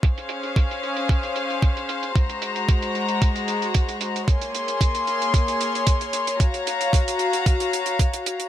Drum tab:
HH |xxxxxxxxxxxxxxxx|xxxxxxxxxxxxxxxx|xxxxxxxxxxxxxxxx|xxxxxxxxxxxxxxxx|
BD |o---o---o---o---|o---o---o---o---|o---o---o---o---|o---o---o---o---|